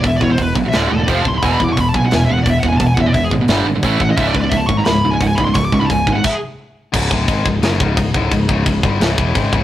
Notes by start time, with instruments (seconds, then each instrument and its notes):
0.02 picked electric bass E1, distorted electric guitar E2 B2, kick, open hi-hat
0.08 lead electric guitar E5
0.17 distorted electric guitar E2 B2, lead electric guitar D5, kick
0.21 picked electric bass E2, lead electric guitar C#5
0.28 distorted electric guitar E2 B2
0.32 lead electric guitar C5
0.37 picked electric bass E1, distorted electric guitar E2 B2, kick, open hi-hat
0.42 lead electric guitar B4
0.54 picked electric bass B1, distorted electric guitar E2 B2, kick
0.63 distorted electric guitar E2 B2
0.68 distorted electric guitar D2, lead electric guitar E5
0.73 picked electric bass D1, distorted electric guitar A2 D3, lead electric guitar D5, snare, open hi-hat
0.87 distorted electric guitar D2 A2, lead electric guitar F#4
0.92 picked electric bass E1, lead electric guitar A4
0.98 distorted electric guitar D2 A2
1.03 distorted electric guitar F2 C3, lead electric guitar D5
1.07 picked electric bass F1, distorted electric guitar F3, lead electric guitar C5, kick, open hi-hat
1.15 lead electric guitar F5
1.22 picked electric bass D1, distorted electric guitar F2 C3, lead electric guitar A5, kick
1.28 lead electric guitar C6
1.33 distorted electric guitar F2 C3
1.38 lead electric guitar B5
1.42 picked electric bass E1, distorted electric guitar E2 B2 E3, lead electric guitar G#5, kick, open hi-hat
1.54 lead electric guitar B5
1.60 distorted electric guitar E2 B2, picked electric bass E2, kick
1.64 lead electric guitar D6
1.69 distorted electric guitar E2 B2
1.73 lead electric guitar C#6
1.77 picked electric bass E1, distorted electric guitar E2 B2, lead electric guitar B5, kick, open hi-hat
1.89 lead electric guitar A5
1.94 picked electric bass B1, distorted electric guitar E2 B2, lead electric guitar G#5, kick
2.03 distorted electric guitar E2 B2, lead electric guitar F#5
2.11 picked electric bass E1, distorted electric guitar E2 B2, snare, open hi-hat
2.16 lead electric guitar G#5
2.25 distorted electric guitar E2 B2, lead electric guitar E5
2.29 picked electric bass E1
2.34 distorted electric guitar E2 B2, lead electric guitar F#5
2.43 picked electric bass E1, distorted electric guitar E2 B2, lead electric guitar D5, kick, open hi-hat
2.50 lead electric guitar E5
2.60 picked electric bass E1, distorted electric guitar E2 B2, lead electric guitar F#5, kick
2.69 distorted electric guitar E2 B2, lead electric guitar G#5
2.78 picked electric bass E1, distorted electric guitar E2 B2, lead electric guitar A5, kick, open hi-hat
2.87 lead electric guitar G#5
2.94 picked electric bass E2, distorted electric guitar B2, lead electric guitar F#5, kick
2.99 distorted electric guitar E2, lead electric guitar E5
3.06 distorted electric guitar E2 B2, lead electric guitar D5
3.14 picked electric bass E1, distorted electric guitar E2 B2, lead electric guitar E5, kick, open hi-hat
3.24 lead electric guitar G#4
3.31 picked electric bass G#1, distorted electric guitar E2 B2, kick
3.41 distorted electric guitar E2 B2
3.48 picked electric bass G1, distorted electric guitar G2 D3 G3, snare, open hi-hat
3.64 picked electric bass G#1, distorted electric guitar G2 D3
3.74 distorted electric guitar G2 D3
3.83 picked electric bass A1, distorted electric guitar A2 E3 A3, kick, open hi-hat
4.00 picked electric bass A1, distorted electric guitar A2 E3, lead electric guitar F#5, kick
4.10 distorted electric guitar A2 E3, lead electric guitar D#5
4.17 picked electric bass C#1, distorted electric guitar C#2 G#2 C#3, lead electric guitar E5, kick, open hi-hat
4.27 lead electric guitar D5
4.34 picked electric bass C#2, distorted electric guitar C#2 G#2, lead electric guitar B4, kick
4.42 distorted electric guitar C#2 G#2, lead electric guitar D5
4.49 picked electric bass C#1, lead electric guitar E5, kick, open hi-hat
4.53 distorted electric guitar C#2 G#2, lead electric guitar A5
4.67 picked electric bass G#1, distorted electric guitar C#2 G#2, lead electric guitar C#6, kick
4.77 distorted electric guitar C#2 G#2, lead electric guitar A#5
4.85 picked electric bass C#1, distorted electric guitar C#2 G#2, lead electric guitar B5, snare, open hi-hat
5.04 picked electric bass C#1, distorted electric guitar C#2 G#2
5.11 distorted electric guitar C#2 G#2, lead electric guitar G#5
5.20 picked electric bass C#1, distorted electric guitar C#2 G#2, lead electric guitar F#5, kick, open hi-hat
5.28 lead electric guitar G#5
5.35 picked electric bass C#1, distorted electric guitar C#2 G#2, lead electric guitar B5, kick
5.45 distorted electric guitar C#2 G#2, lead electric guitar C6
5.54 picked electric bass C#1, distorted electric guitar C#2 G#2, lead electric guitar C#6, kick, open hi-hat
5.65 lead electric guitar D6
5.72 picked electric bass C#2, distorted electric guitar C#2 G#2, lead electric guitar C#6, kick
5.80 distorted electric guitar C#2 G#2, lead electric guitar B5
5.85 lead electric guitar A5
5.90 picked electric bass C#1, distorted electric guitar C#2 G#2, lead electric guitar G#5, kick, open hi-hat
6.07 picked electric bass G#1, distorted electric guitar C#2 G#2, kick
6.13 distorted electric guitar C#2 G#2, lead electric guitar F#5
6.24 lead electric guitar E5, kick, crash
6.29 lead electric guitar G#4
6.93 picked electric bass C#1, distorted electric guitar C#2 G#2 C#3, string section D#4, kick, crash
6.97 string section C#3 G#3 E4
7.11 picked electric bass D1, distorted electric guitar D2 A2 D3, kick
7.27 picked electric bass G#1, distorted electric guitar G#2 D#3 G#3, kick, crash
7.45 picked electric bass C#1, distorted electric guitar C#2 G#2, kick
7.61 picked electric bass F#1, distorted electric guitar F#2 C#3 F#3, snare, crash
7.79 picked electric bass C#1, distorted electric guitar C#2 G#2 C#3, kick
7.97 picked electric bass C#1, distorted electric guitar C#2 G#2, kick, crash
8.14 picked electric bass D1, distorted electric guitar D2 A2 D3, kick
8.31 picked electric bass C#1, distorted electric guitar C#2 G#2, kick, crash
8.49 picked electric bass C#1, distorted electric guitar C#2 G#2 C#3, kick
8.66 picked electric bass C#1, distorted electric guitar C#2 G#2, kick, crash
8.83 picked electric bass G1, distorted electric guitar G2 D3 G3, kick
9.00 picked electric bass C#1, distorted electric guitar C#2 G#2 C#3, string section C#4, snare, crash
9.17 picked electric bass E1, distorted electric guitar E2 B2 E3, kick
9.35 picked electric bass G#1, distorted electric guitar G#2 D#3 G#3, kick, crash
9.53 picked electric bass C#1, distorted electric guitar C#2 G#2 C#3, kick